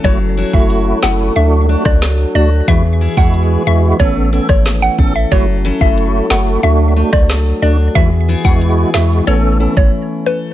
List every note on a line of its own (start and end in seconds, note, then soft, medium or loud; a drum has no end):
0.00 0.19 A3 loud
0.00 1.33 C#4 medium
0.00 0.11 E4 medium
0.00 0.38 A4 medium
0.00 closed hi-hat medium
0.04 0.44 F#1 loud
0.04 1.35 F#3 medium
0.04 2.71 F#3 medium
0.04 0.19 E4 medium
0.04 1.35 E4 medium
0.04 0.19 F#4 loud
0.04 2.65 A4 medium
0.04 0.32 C#5 loud
0.04 kick loud
0.37 1.43 E4 medium
0.37 2.35 F#4 medium
0.37 1.43 C#5 medium
0.53 0.93 F#1 loud
0.53 0.99 A3 medium
0.53 0.99 E4 medium
0.53 0.99 F#4 medium
0.53 0.68 E5 medium
0.53 kick medium
0.70 closed hi-hat medium
1.03 1.30 F#1 medium
1.03 1.33 A3 medium
1.03 1.33 E4 medium
1.03 1.34 F#4 medium
1.03 1.17 F#5 medium
1.03 snare loud
1.36 1.76 D2 loud
1.36 2.67 F#3 medium
1.36 1.66 A3 loud
1.36 1.66 D4 medium
1.36 2.67 D4 medium
1.36 2.67 F#4 medium
1.36 1.67 F#4 loud
1.36 1.50 E5 medium
1.36 closed hi-hat medium
1.69 1.84 A3 medium
1.69 1.84 D4 medium
1.69 2.75 D4 medium
1.69 1.84 F#4 medium
1.85 2.25 C#2 medium
1.85 1.99 D5 medium
1.85 kick loud
1.85 cross-stick medium
2.02 snare loud
2.02 closed hi-hat medium
2.35 2.61 D2 loud
2.35 2.50 A3 medium
2.35 2.50 D4 medium
2.35 2.75 F#4 medium
2.35 2.50 F#4 medium
2.35 2.49 D5 medium
2.68 3.08 E2 loud
2.68 3.98 E3 medium
2.68 5.35 E3 medium
2.68 2.82 G#3 loud
2.68 5.29 B3 medium
2.68 2.83 E4 medium
2.68 3.98 F#4 medium
2.68 2.83 F#4 loud
2.68 3.98 G#4 medium
2.68 2.96 E5 loud
2.68 kick loud
2.68 closed hi-hat medium
3.01 4.32 E4 medium
3.01 4.07 G#4 medium
3.01 5.35 E5 medium
3.17 3.57 E2 medium
3.17 3.63 G#3 medium
3.17 3.63 E4 medium
3.17 3.63 F#4 medium
3.17 3.31 F#5 medium
3.17 kick medium
3.34 closed hi-hat medium
3.66 3.93 E2 loud
3.66 3.97 G#3 medium
3.66 3.97 E4 medium
3.66 3.97 F#4 medium
3.66 3.81 E5 medium
3.99 4.39 A1 loud
3.99 5.30 A3 medium
3.99 5.31 A3 medium
3.99 4.30 B3 loud
3.99 6.61 C#4 medium
3.99 4.30 C#4 medium
3.99 4.30 A4 loud
3.99 4.14 C#5 medium
3.99 kick loud
3.99 closed hi-hat medium
4.32 4.47 B3 medium
4.32 4.47 C#4 medium
4.32 5.38 E4 medium
4.32 4.48 A4 medium
4.49 4.89 G#1 medium
4.49 4.63 C#5 medium
4.49 kick loud
4.49 cross-stick medium
4.65 snare loud
4.65 closed hi-hat medium
4.82 4.96 F#5 medium
4.98 5.25 A1 loud
4.98 5.13 B3 medium
4.98 5.13 C#4 medium
4.98 5.65 A4 medium
4.98 5.13 A4 medium
4.98 kick loud
5.16 5.29 E5 medium
5.31 5.71 F#1 loud
5.31 6.62 F#3 medium
5.31 7.98 F#3 medium
5.31 5.46 A3 loud
5.31 6.62 E4 medium
5.31 5.46 E4 medium
5.31 5.46 F#4 loud
5.31 7.93 A4 medium
5.31 5.59 C#5 loud
5.31 kick loud
5.31 closed hi-hat medium
5.65 6.70 C#4 medium
5.65 6.70 E4 medium
5.65 6.71 A4 medium
5.81 6.21 F#1 loud
5.81 6.26 A3 medium
5.81 6.27 E4 medium
5.81 6.27 F#4 medium
5.81 5.95 E5 medium
5.81 kick medium
5.98 closed hi-hat medium
6.30 6.57 F#1 medium
6.30 6.61 A3 medium
6.30 6.61 E4 medium
6.30 6.61 F#4 medium
6.30 6.44 F#5 medium
6.30 snare loud
6.63 7.03 D2 loud
6.63 7.94 F#3 medium
6.63 6.94 A3 loud
6.63 7.94 D4 medium
6.63 6.94 D4 medium
6.63 9.24 F#4 medium
6.63 6.94 F#4 loud
6.63 6.77 E5 medium
6.63 closed hi-hat medium
6.96 7.11 A3 medium
6.96 8.02 A3 medium
6.96 7.11 D4 medium
6.96 7.11 F#4 medium
7.13 7.53 C#2 medium
7.13 7.27 D5 medium
7.13 kick loud
7.13 cross-stick medium
7.29 snare loud
7.29 closed hi-hat medium
7.62 7.89 D2 loud
7.62 7.77 A3 medium
7.62 7.77 D4 medium
7.62 8.02 D4 medium
7.62 7.77 F#4 medium
7.62 7.76 D5 medium
7.95 8.35 E2 loud
7.95 9.26 E3 medium
7.95 10.54 E3 medium
7.95 8.10 G#3 medium
7.95 10.42 B3 medium
7.95 8.10 E4 medium
7.95 8.10 F#4 loud
7.95 9.26 G#4 medium
7.95 8.23 E5 loud
7.95 kick loud
7.95 closed hi-hat medium
8.28 9.34 B3 medium
8.28 9.60 E4 medium
8.28 9.34 G#4 medium
8.44 8.84 E2 medium
8.44 8.90 G#3 medium
8.44 8.90 E4 medium
8.44 8.90 F#4 medium
8.44 8.59 F#5 medium
8.44 kick medium
8.61 closed hi-hat medium
8.94 9.21 E2 loud
8.94 9.24 G#3 medium
8.94 9.25 E4 medium
8.94 9.25 F#4 medium
8.94 9.08 E5 medium
8.94 snare loud
9.27 9.67 A1 loud
9.27 10.42 A3 medium
9.27 10.54 A3 medium
9.27 9.57 B3 medium
9.27 10.42 C#4 medium
9.27 9.58 C#4 medium
9.27 9.58 A4 loud
9.27 9.41 C#5 medium
9.27 closed hi-hat medium
9.60 9.75 B3 medium
9.60 9.75 C#4 medium
9.60 10.54 E4 medium
9.60 9.75 A4 medium
9.77 9.90 G#1 medium
9.77 9.91 C#5 medium
9.77 kick loud
10.26 10.54 A4 medium
10.26 10.40 B4 medium